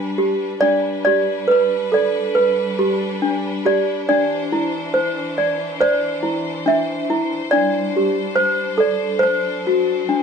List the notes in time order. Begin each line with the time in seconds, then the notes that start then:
Already playing: G3 D4 G4 B4 D5
0.18 G4
0.59 G3 D4 B4 D5
1.05 G4 D5
1.48 B4
1.92 A4 D5
2.35 B4
2.79 G4
3.22 D4
3.65 G4 D5
4.08 E3 D4 C5 D5
4.52 E4
4.94 C5
5.38 D5
5.80 C5 D5
6.23 E4
6.66 D4 E5
7.10 E4
7.51 G3 D4 D5
7.97 G4
8.36 C5
8.78 A4 D5
9.19 F#3 C5
9.67 F#4
10.09 D4